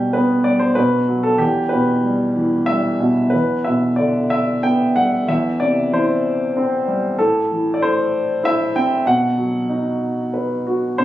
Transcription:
0.00 0.74 B2 medium
0.00 0.45 G3 soft
0.00 0.16 G4 medium
0.13 0.75 B3 medium
0.13 0.46 B4 medium
0.44 0.76 G3 soft
0.44 0.61 D5 medium
0.59 0.75 C5 medium
0.75 1.37 B2 medium
0.75 1.24 B4 medium
1.08 1.39 F#3 soft
1.23 1.40 A4 medium
1.38 3.29 E2 medium
1.38 1.72 G4 medium
1.69 2.97 B2 soft
1.69 2.69 B4 medium
2.04 2.67 G3 medium
2.36 3.31 E3 soft
2.66 3.32 G3 medium
2.66 3.12 E5 medium
3.00 3.32 B2 soft
3.30 5.25 E2 soft
3.30 3.66 B4 medium
3.64 4.93 B2 soft
3.64 3.99 E5 medium
3.96 5.24 D3 soft
3.96 4.32 D5 medium
4.30 4.65 E5 medium
4.63 5.26 B3 soft
4.63 4.97 G5 medium
4.96 5.28 G3 soft
4.96 5.29 F#5 medium
5.28 7.15 E2 medium
5.28 5.62 E5 medium
5.60 6.84 C3 soft
5.60 5.93 D5 medium
5.92 7.15 E3 soft
5.92 6.84 C5 medium
6.57 7.18 C4 soft
6.87 7.18 G3 soft
7.19 9.02 A2 medium
7.19 7.77 A4 medium
7.52 8.71 E3 soft
7.74 7.81 D5 medium
7.82 9.02 A3 soft
7.82 8.46 C5 medium
8.44 9.04 E4 medium
8.44 8.76 E5 medium
8.76 9.06 C4 soft
8.76 9.07 G5 medium
9.05 10.94 B2 medium
9.05 10.62 F#5 medium
9.38 10.62 F#3 soft
9.69 10.95 D#4 soft
10.34 10.97 B4 soft
10.67 10.98 F#4 soft
10.98 11.05 C3 medium
10.98 11.05 C5 medium

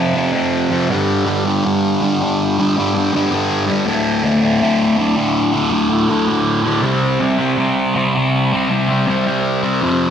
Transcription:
0.00 0.13 F2 medium
0.00 0.15 C3 medium
0.00 0.16 F3 medium
0.14 0.71 F2 medium
0.14 0.34 C3 medium
0.14 0.31 F3 medium
0.33 0.72 C3 medium
0.33 0.69 F3 medium
0.70 0.89 C3 medium
0.70 0.87 F3 medium
0.89 1.25 G2 medium
0.89 1.26 D3 medium
0.89 1.28 G3 medium
1.26 1.62 G2 medium
1.26 1.47 D3 medium
1.26 1.44 G3 medium
1.45 1.64 D3 medium
1.45 1.65 G3 medium
1.63 2.00 G2 medium
1.63 2.02 D3 medium
1.63 2.03 G3 medium
2.01 2.58 G2 medium
2.01 2.23 D3 medium
2.01 2.19 G3 medium
2.20 2.59 D3 medium
2.20 2.57 G3 medium
2.58 2.77 D3 soft
2.58 2.78 G3 medium
2.76 3.11 G2 medium
2.76 2.96 D3 medium
2.76 2.93 G3 medium
2.94 3.13 D3 medium
2.94 3.15 G3 medium
3.12 3.69 G2 medium
3.12 3.33 D3 medium
3.12 3.30 G3 medium
3.31 3.68 D3 medium
3.31 3.65 G3 medium
3.66 3.86 D3 medium
3.66 3.84 G3 medium
3.85 4.21 D2 medium
3.85 4.23 A2 medium
3.85 4.24 D3 medium
4.23 4.59 D2 medium
4.23 4.44 A2 medium
4.23 4.41 D3 medium
4.42 4.61 A2 medium
4.42 4.62 D3 medium
4.60 4.95 D2 medium
4.60 4.97 A2 medium
4.60 4.99 D3 medium
4.97 5.53 D2 medium
4.97 5.17 A2 medium
4.97 5.15 D3 medium
5.16 5.55 A2 medium
5.16 5.51 D3 medium
5.53 5.71 A2 medium
5.53 5.73 D3 medium
5.71 6.06 D2 medium
5.71 5.91 A2 medium
5.71 5.89 D3 medium
5.90 6.08 A2 medium
5.90 6.09 D3 medium
6.08 6.65 D2 medium
6.08 6.29 A2 medium
6.08 6.26 D3 medium
6.28 6.65 A2 medium
6.28 6.62 D3 medium
6.63 6.82 A2 medium
6.63 6.81 D3 medium
6.82 7.19 C3 medium
6.82 7.21 G3 medium
6.82 7.23 C4 medium
7.20 7.56 C3 medium
7.20 7.41 G3 medium
7.20 7.38 C4 medium
7.38 7.58 G3 medium
7.38 7.59 C4 medium
7.57 7.93 C3 medium
7.57 7.96 G3 medium
7.57 7.97 C4 medium
7.94 8.51 C3 medium
7.94 8.17 G3 medium
7.94 8.14 C4 medium
8.14 8.55 G3 medium
8.14 8.52 C4 medium
8.53 8.70 G3 soft
8.53 8.72 C4 medium
8.69 9.05 C3 medium
8.69 8.91 G3 medium
8.69 8.88 C4 medium
8.88 9.08 G3 medium
8.88 9.09 C4 medium
9.07 9.62 C3 medium
9.07 9.29 G3 medium
9.07 9.26 C4 loud
9.26 9.64 G3 medium
9.26 9.62 C4 medium
9.63 9.82 G3 medium
9.63 9.83 C4 medium
9.81 10.10 F2 medium
9.81 10.10 C3 medium
9.81 10.10 F3 medium

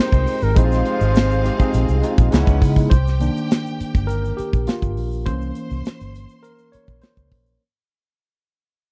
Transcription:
0.00 0.23 D#3 medium
0.00 0.23 G3 medium
0.00 0.54 G#3 loud
0.00 0.23 C4 medium
0.00 0.56 C4 medium
0.00 0.53 D#4 medium
0.00 0.57 D#4 medium
0.00 0.58 F4 medium
0.00 0.23 G4 medium
0.00 0.58 G4 loud
0.00 0.59 G#4 medium
0.00 0.31 A#4 medium
0.00 0.45 C5 loud
0.00 0.53 C5 medium
0.00 0.53 G5 medium
0.12 0.25 C2 medium
0.12 kick medium
0.12 shaker medium
0.27 open hi-hat medium
0.27 shaker medium
0.42 0.54 G#1 medium
0.42 0.59 A#4 medium
0.42 shaker medium
0.54 0.80 A#1 loud
0.54 2.01 C3 medium
0.54 2.00 F3 medium
0.54 1.14 G#3 loud
0.54 2.01 G#3 medium
0.54 1.14 C4 medium
0.54 2.29 C4 medium
0.54 1.15 D#4 loud
0.54 0.64 E4 medium
0.54 2.00 F4 medium
0.54 2.29 G#4 medium
0.54 2.33 C5 loud
0.54 2.29 F5 loud
0.54 kick loud
0.54 closed hi-hat medium
0.54 shaker medium
0.65 1.19 F4 loud
0.72 snare soft
0.72 shaker soft
0.85 closed hi-hat medium
1.01 1.48 G#1 medium
1.01 shaker soft
1.15 snare loud
1.15 closed hi-hat medium
1.15 shaker medium
1.31 shaker soft
1.42 1.53 G#3 medium
1.42 1.53 C4 medium
1.42 1.54 D#4 medium
1.42 1.55 G4 medium
1.42 closed hi-hat medium
1.42 shaker soft
1.57 1.87 G#3 medium
1.57 1.88 C4 medium
1.57 1.89 D#4 medium
1.57 1.89 G#4 loud
1.57 kick medium
1.57 shaker medium
1.74 1.86 A#1 loud
1.74 closed hi-hat medium
1.74 shaker medium
1.88 2.01 C2 medium
1.88 shaker soft
2.01 2.29 G#3 medium
2.01 2.32 C4 medium
2.01 2.32 D#4 medium
2.01 2.33 F4 medium
2.01 closed hi-hat medium
2.01 shaker medium
2.18 2.30 A#1 medium
2.18 kick medium
2.18 shaker medium
2.31 2.45 C#2 loud
2.31 2.61 G#2 medium
2.31 2.61 C#3 medium
2.31 2.61 E3 medium
2.31 2.79 G#3 medium
2.31 2.79 B3 medium
2.31 2.61 C#4 medium
2.31 2.90 C#4 medium
2.31 2.80 D#4 medium
2.31 2.80 E4 medium
2.31 2.90 B4 medium
2.31 2.90 F#5 medium
2.31 snare loud
2.31 closed hi-hat medium
2.31 shaker medium
2.47 2.59 C#2 medium
2.47 kick loud
2.47 shaker medium
2.62 2.86 C#3 loud
2.62 kick loud
2.62 open hi-hat medium
2.62 shaker soft
2.76 kick medium
2.76 shaker soft
2.90 3.27 C2 loud
2.90 4.93 G4 medium
2.90 4.04 C5 medium
2.90 4.93 G5 loud
2.90 kick loud
2.90 closed hi-hat medium
2.90 shaker medium
3.07 snare soft
3.07 shaker soft
3.20 4.04 D#3 medium
3.20 4.05 A#3 soft
3.20 4.05 D4 medium
3.20 closed hi-hat medium
3.20 shaker medium
3.37 shaker soft
3.51 snare loud
3.51 closed hi-hat loud
3.51 shaker medium
3.66 shaker soft
3.80 muted fingered electric bass stroke soft
3.80 closed hi-hat medium
3.80 shaker soft
3.95 4.30 G1 medium
3.95 kick loud
3.95 shaker soft
4.07 4.35 A#4 medium
4.07 closed hi-hat medium
4.07 shaker medium
4.25 shaker soft
4.37 4.65 G4 medium
4.37 muted fingered electric bass stroke soft
4.37 closed hi-hat medium
4.37 shaker soft
4.53 4.65 A#1 medium
4.53 kick medium
4.53 shaker soft
4.67 5.09 F4 medium
4.67 snare loud
4.67 closed hi-hat medium
4.67 shaker medium
4.82 4.98 G1 medium
4.82 kick medium
4.82 shaker soft
4.97 5.27 A#1 loud
4.97 open hi-hat medium
5.12 shaker soft
5.26 5.50 C2 loud
5.26 7.57 E3 medium
5.26 7.58 A#3 medium
5.26 7.58 C#4 medium
5.26 6.47 C5 loud
5.26 7.28 C5 loud
5.26 7.28 C6 loud
5.26 kick loud
5.26 closed hi-hat medium
5.26 shaker medium
5.42 shaker soft
5.55 closed hi-hat medium
5.55 shaker medium
5.71 5.83 C2 medium
5.71 shaker soft
5.85 snare loud
5.85 closed hi-hat medium
5.85 shaker medium
6.00 6.24 G1 medium
6.00 closed hi-hat soft
6.00 shaker soft
6.15 closed hi-hat medium
6.15 shaker soft
6.29 shaker soft
6.43 6.56 A#4 medium
6.43 closed hi-hat medium
6.43 shaker medium
6.58 shaker soft
6.72 7.00 C#5 medium
6.72 muted fingered electric bass stroke soft
6.72 closed hi-hat medium
6.72 shaker soft
6.87 7.00 A#1 medium
6.87 kick medium
6.87 shaker soft
7.02 7.43 C5 medium
7.02 snare loud
7.02 closed hi-hat medium
7.02 shaker medium
7.17 7.32 C#2 medium
7.17 kick medium
7.17 shaker soft
7.32 7.56 A#1 medium
7.32 kick loud
7.32 open hi-hat medium
7.46 shaker soft

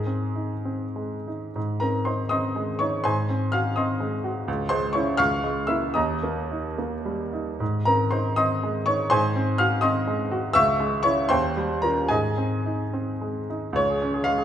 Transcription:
0.00 1.50 G#2 soft
0.00 1.26 G#4 medium
0.07 0.54 C4 soft
0.36 0.84 D#4 soft
0.65 1.15 C4 soft
0.96 1.45 G#3 soft
1.28 1.56 D#4 soft
1.56 3.00 G#2 soft
1.80 2.22 C4 soft
1.80 2.05 A#4 medium
1.80 2.06 A#5 medium
2.05 2.46 D#4 soft
2.05 2.29 C5 soft
2.05 2.29 C6 medium
2.29 2.70 C4 soft
2.29 2.76 D#5 medium
2.29 2.76 C6 medium
2.29 2.79 D#6 medium
2.56 2.95 G#3 soft
2.79 3.05 D#4 soft
2.79 3.03 C#5 medium
2.79 3.04 C#6 medium
3.04 4.44 G#2 medium
3.04 3.50 C5 medium
3.04 3.50 G#5 medium
3.04 3.53 C6 medium
3.30 3.68 C4 soft
3.52 3.91 F#4 soft
3.52 3.75 F5 medium
3.52 3.76 F6 medium
3.76 4.15 C4 soft
3.76 4.43 D#5 soft
3.76 4.43 C6 medium
3.76 4.47 D#6 medium
4.00 4.38 G#3 soft
4.24 4.47 F#4 soft
4.48 5.17 C#2 medium
4.69 5.10 G#3 medium
4.69 4.93 C5 medium
4.69 4.94 C6 medium
4.93 5.17 C#4 soft
4.93 5.17 E4 soft
4.93 5.17 C#5 medium
4.93 5.17 C#6 medium
5.17 5.94 C#2 medium
5.17 5.65 F5 medium
5.17 5.65 C#6 medium
5.17 5.68 F6 loud
5.44 5.85 G#3 soft
5.67 5.93 A#3 soft
5.67 5.93 E4 soft
5.67 5.93 E5 medium
5.67 5.95 E6 medium
5.94 7.56 D#2 medium
5.94 6.73 D#5 medium
5.94 6.73 A#5 medium
5.94 6.77 D#6 medium
6.23 6.67 A#3 soft
6.51 6.94 D#4 soft
6.78 7.22 A#3 soft
7.05 7.50 G3 soft
7.33 7.61 D#4 soft
7.60 9.08 G#2 medium
7.85 8.29 C4 soft
7.85 8.11 A#4 medium
7.85 8.12 A#5 medium
8.11 8.53 D#4 soft
8.11 8.36 C5 soft
8.11 8.36 C6 medium
8.36 8.78 C4 soft
8.36 8.84 D#5 medium
8.36 8.84 C6 medium
8.36 8.87 D#6 medium
8.63 9.02 G#3 soft
8.86 9.12 D#4 soft
8.86 9.10 C#5 medium
8.86 9.11 C#6 medium
9.10 10.50 G#2 medium
9.10 9.55 C5 medium
9.10 9.55 G#5 medium
9.10 9.58 C6 medium
9.36 9.73 C4 medium
9.58 9.97 F#4 medium
9.58 9.81 F5 medium
9.58 9.82 F6 medium
9.81 10.21 C4 medium
9.81 10.51 D#5 medium
9.81 10.50 C6 medium
9.81 10.54 D#6 medium
10.07 10.45 G#3 soft
10.31 10.55 F#4 medium
10.53 11.28 C#2 medium
10.53 11.01 E5 medium
10.53 11.01 C#6 medium
10.53 11.04 E6 loud
10.80 11.20 G#3 medium
11.03 11.28 C#4 soft
11.03 11.28 E4 medium
11.03 11.28 C#5 medium
11.03 11.29 C#6 medium
11.29 12.09 D#2 medium
11.29 11.80 C5 medium
11.29 11.80 G5 medium
11.29 11.83 C6 medium
11.57 12.00 G3 soft
11.82 12.08 C#4 soft
11.82 12.08 F4 soft
11.82 12.09 A#4 medium
11.82 12.10 A#5 medium
12.08 13.72 G#2 medium
12.08 13.45 G#4 medium
12.08 13.45 D#5 medium
12.08 13.48 G#5 medium
12.38 12.82 C4 soft
12.66 13.10 D#4 soft
12.93 13.38 C4 soft
13.21 13.66 G#3 soft
13.50 13.76 D#4 soft
13.73 14.44 C#2 medium
13.73 14.25 C#5 medium
13.90 14.09 G#4 soft
14.02 14.21 C#4 medium
14.14 14.33 G#4 soft
14.24 14.44 G#3 soft
14.24 14.44 F5 medium
14.38 14.44 G#4 medium

